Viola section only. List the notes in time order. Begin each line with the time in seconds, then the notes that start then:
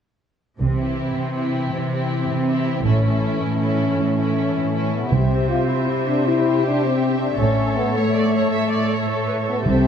0.80 C4
1.36 C4
1.92 C4
2.49 C4
2.86 C#4
3.05 C#4
3.60 C#4
4.16 C#4
4.74 C#4
5.12 G4 C5
7.38 A4 C#5
9.65 G4 C5